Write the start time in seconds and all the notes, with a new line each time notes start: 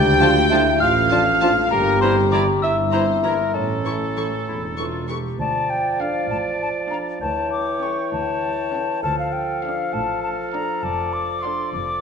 Already playing: D2 G4 G5 G6
0.20 F3 D4 F4 A5
0.50 F3 D4 E4 F4 A5
0.80 A1 A2 F4 F5 F6
1.11 F3 D4 F4 A5
1.42 F3 D4 F4 A5
1.71 G1 G2 A#3 G4 A#4 A#5
2.01 E3 C4 E4 C5 A#5 C6
2.31 E3 D4 E4 D5 A#5 D6
2.61 G1 G2 E4 E5 E6
2.92 E3 C4 E4 C5 A#5 C6
3.23 E3 A#3 E4 A#4 A#5
3.54 A1 A2 A3 C#4 A4 A5
3.85 E3 E4 A4 C#6
4.16 E3 E4 A4 C#6
4.47 E1 E2 E4
4.76 E3 F4 A4 C#6
5.09 E3 G4 A4 C#6
5.39 D2 F3 D5 A5
5.69 F3 D4 G5
6.00 F3 D4 A4 F5
6.30 A1 A2 A5
6.61 F3 D4 A5
6.91 F3 D4 A4 F5 A#5
7.21 D2 E3 C#5 G5 A5
7.52 G3 C#4 D6
7.82 G3 C#4 A4 G5 C#6
8.13 D2 A5
8.45 G3 C#4
8.72 G3 C#4 A4 G5
9.03 D2 F3 A4 F5 A5
9.19 F5
9.32 A3 D4 G5
9.62 A3 D4 A4 F5
9.93 A1 A2 A5
10.23 A3 D4 A5
10.52 A3 D4 A4 F5 A#5
10.83 F1 F2 D5 A5
11.13 A3 D4 D6
11.43 A3 D4 A4 F5 C6
11.73 F1 F2 D6